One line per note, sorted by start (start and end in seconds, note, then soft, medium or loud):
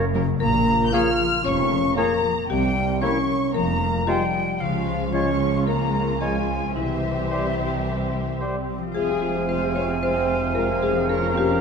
0.00 0.35 F#1 medium
0.00 0.35 F#2 medium
0.00 0.44 F#2 medium
0.00 0.15 C#3 soft
0.00 0.66 A#3 medium
0.00 3.57 A#4 medium
0.14 0.44 C#3 medium
0.14 0.23 F#3 medium
0.14 0.23 A#3 medium
0.14 0.22 C#4 medium
0.14 0.22 A#4 medium
0.40 0.84 A#1 medium
0.40 0.85 A#2 medium
0.40 2.52 A#2 medium
0.40 0.89 A#3 medium
0.40 0.89 A#4 medium
0.40 0.89 A#5 medium
0.40 0.84 A#5 medium
0.68 1.44 A#3 soft
0.88 1.45 F4 medium
0.88 0.94 G6 medium
0.92 1.01 F3 soft
0.92 1.01 A#3 medium
0.92 1.10 A#3 soft
0.92 1.01 C#4 medium
0.92 1.01 G#4 medium
0.92 1.09 G#4 medium
0.92 1.97 G#4 medium
0.92 1.10 C#5 medium
0.92 1.41 F5 medium
0.92 1.44 F6 medium
0.92 1.46 F6 medium
1.19 1.71 F3 soft
1.44 1.89 F1 medium
1.44 1.89 F2 medium
1.44 2.75 A#3 medium
1.44 1.95 C#4 medium
1.44 1.94 C#5 medium
1.44 1.95 C#6 medium
1.44 1.98 C#6 medium
1.72 2.22 F3 soft
1.96 2.05 F3 soft
1.96 2.49 A#3 medium
1.96 2.13 A#3 medium
1.96 2.06 A#3 soft
1.96 2.05 C#4 soft
1.96 2.06 G#4 medium
1.96 2.52 G#4 soft
1.96 2.14 G#4 medium
1.96 2.46 A#4 medium
1.96 2.13 C#5 medium
1.96 2.48 A#5 medium
1.96 2.49 A#5 medium
2.24 2.52 F3 soft
2.49 2.93 C2 medium
2.49 2.93 C3 medium
2.49 3.57 C3 medium
2.49 3.01 G3 medium
2.49 2.99 G4 medium
2.49 3.01 G5 medium
2.49 3.02 G5 medium
2.76 3.57 A#3 soft
3.01 3.10 E3 soft
3.01 3.11 A#3 medium
3.01 3.19 A#3 soft
3.01 3.09 C#4 soft
3.01 3.55 C#4 medium
3.01 3.18 E4 medium
3.01 3.57 E4 soft
3.01 3.09 G4 soft
3.01 3.51 C#5 medium
3.01 3.18 C#5 soft
3.01 3.54 C#6 medium
3.30 3.58 G3 soft
3.53 3.99 F1 medium
3.53 3.99 F2 medium
3.53 6.78 F3 medium
3.53 4.07 A#3 medium
3.53 4.04 A#4 medium
3.53 4.06 A#5 medium
3.53 4.07 A#5 medium
3.81 5.13 F4 soft
4.07 4.16 F3 soft
4.07 4.59 G3 medium
4.07 4.24 G#3 soft
4.07 4.16 G#3 soft
4.07 4.15 C4 soft
4.07 4.23 F4 medium
4.07 4.15 F4 soft
4.07 4.57 G4 medium
4.07 4.63 C5 soft
4.07 4.24 C5 soft
4.07 4.62 G5 medium
4.07 4.61 G5 medium
4.35 4.86 G#3 soft
4.60 6.71 C#2 medium
4.60 6.72 C#2 soft
4.60 6.78 C#3 medium
4.60 5.13 F3 medium
4.60 5.10 F3 soft
4.60 5.10 G#3 medium
4.60 5.10 C#4 medium
4.60 5.10 F4 soft
4.60 5.10 F4 medium
4.60 5.12 F5 medium
4.60 5.15 F5 medium
4.87 5.66 G#3 soft
5.13 6.19 F3 soft
5.13 6.19 G#3 soft
5.13 5.30 G#3 soft
5.13 5.67 C#4 medium
5.13 6.19 C#4 medium
5.13 6.20 F4 soft
5.13 5.30 F4 soft
5.13 6.19 F4 soft
5.13 5.63 C#5 medium
5.13 5.30 C#5 soft
5.13 5.66 C#6 soft
5.13 5.67 C#6 medium
5.41 5.93 C#4 soft
5.66 6.78 G#3 soft
5.66 6.21 A#3 medium
5.66 6.17 A#4 medium
5.66 6.19 A#5 medium
5.66 6.21 A#5 medium
5.95 6.47 C#4 soft
6.21 6.74 F3 soft
6.21 6.37 G#3 soft
6.21 6.75 G#3 soft
6.21 6.75 C#4 soft
6.21 6.75 F4 soft
6.21 6.37 F4 soft
6.21 6.78 F4 soft
6.21 6.72 G#4 soft
6.21 6.37 C#5 soft
6.21 6.76 G#5 medium
6.21 6.75 G#5 soft
6.49 6.78 C#4 soft
6.75 8.75 C2 soft
6.75 8.98 C3 soft
6.75 8.38 E3 medium
6.75 8.75 G3 soft
6.75 8.71 C4 soft
6.75 8.37 E4 soft
6.75 8.75 G4 soft
6.75 8.75 C5 soft
6.75 8.38 E5 medium
7.04 7.86 C4 soft
7.30 7.47 G3 soft
7.30 7.46 G4 soft
7.30 8.41 G4 soft
7.30 7.47 C5 soft
7.59 8.14 G3 soft
7.87 8.81 C4 soft
8.15 8.68 G3 soft
8.40 8.58 G3 soft
8.40 8.58 G4 soft
8.40 8.98 G4 soft
8.40 8.56 C5 soft
8.69 8.98 G3 soft
8.78 10.90 F3 soft
8.83 11.04 C4 soft
8.87 10.99 F4 soft
8.92 11.61 F1 soft
8.92 11.61 F2 medium
8.92 9.08 G#3 soft
8.92 11.05 C4 medium
8.92 11.05 C4 soft
8.92 9.08 F4 soft
8.92 9.44 G#4 medium
8.92 9.45 G#4 medium
8.92 11.09 C5 soft
8.92 11.04 C5 medium
8.92 11.61 F5 medium
8.92 9.07 F5 soft
8.92 11.11 G#5 soft
8.96 11.05 C3 soft
9.08 9.22 C4 soft
9.08 9.22 G#4 soft
9.08 9.22 G#5 soft
9.22 9.35 G#3 soft
9.22 9.35 F4 soft
9.22 9.35 F5 soft
9.35 9.49 C4 soft
9.35 9.49 G#4 soft
9.35 9.48 G#5 soft
9.48 9.61 G#3 soft
9.48 9.61 F4 soft
9.48 9.74 C5 medium
9.48 9.75 C5 medium
9.48 9.61 F5 soft
9.61 9.76 C4 soft
9.61 9.76 G#4 soft
9.61 9.75 G#5 soft
9.74 9.89 G#3 soft
9.74 9.89 F4 soft
9.74 9.82 C#5 medium
9.74 10.00 C#5 medium
9.74 9.88 F5 soft
9.88 10.02 C4 soft
9.88 10.02 G#4 soft
9.88 10.02 G#5 soft
10.02 10.15 G#3 soft
10.02 10.14 F4 soft
10.02 10.54 C5 medium
10.02 10.52 C5 medium
10.02 10.15 F5 soft
10.15 10.28 C4 soft
10.15 10.28 G#4 soft
10.15 10.28 G#5 soft
10.28 10.42 G#3 soft
10.28 10.42 F4 soft
10.28 10.42 F5 soft
10.41 10.55 C4 soft
10.41 10.55 G#4 soft
10.41 10.55 G#5 soft
10.54 10.67 G#3 soft
10.54 10.67 F4 soft
10.54 10.81 A#4 medium
10.54 10.80 A#4 medium
10.54 10.68 F5 soft
10.69 10.82 C4 soft
10.69 10.82 G#4 soft
10.69 10.82 G#5 soft
10.81 10.95 G#3 soft
10.81 10.96 F4 soft
10.81 10.89 G#4 medium
10.81 11.07 G#4 medium
10.81 10.96 F5 soft
10.91 11.61 F3 soft
10.91 11.09 G#4 soft
10.95 11.61 A#3 soft
10.95 11.09 C4 medium
10.95 11.09 G#5 soft
11.00 11.61 F4 soft
11.05 11.61 F3 medium
11.05 11.35 A#4 medium
11.05 11.61 A#4 medium
11.05 11.61 C#5 soft
11.09 11.21 A#3 soft
11.09 11.61 C#4 medium
11.09 11.21 F4 soft
11.09 11.34 A#4 medium
11.09 11.61 A#5 soft
11.09 11.22 C#6 soft
11.22 11.36 C#4 soft
11.22 11.36 A#4 soft
11.22 11.36 A#5 soft
11.35 11.49 A#3 soft
11.35 11.49 F4 soft
11.35 11.61 G4 medium
11.35 11.49 C#6 soft
11.49 11.61 C#4 soft
11.49 11.61 A#4 soft
11.49 11.61 A#5 soft